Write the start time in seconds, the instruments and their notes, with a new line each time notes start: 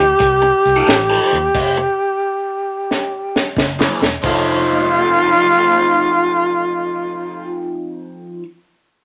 Already playing: fingered electric bass D2, tenor saxophone G4
0.19 fingered electric bass C2, muted overdriven electric guitar stroke, kick, closed hi-hat
0.42 muted overdriven electric guitar stroke
0.65 fingered electric bass C2, closed hi-hat
0.76 overdriven electric guitar F3 C4 D#4 A4
0.87 fingered electric bass A1, snare, closed hi-hat
1.10 overdriven electric guitar F3 C4 D#4 A4
1.33 fingered electric bass D#2, closed hi-hat
1.55 fingered electric bass F1, kick, closed hi-hat, crash
1.77 muted overdriven electric guitar stroke
2.91 snare
3.36 snare
3.56 fingered electric bass F#1, kick, snare
3.79 overdriven electric guitar F#3 A#3 E4 G#4, snare
4.01 fingered electric bass E1, snare
4.22 fingered electric bass F1, overdriven electric guitar F3 C4 D#4, tenor saxophone F4, kick, crash
4.27 overdriven electric guitar A4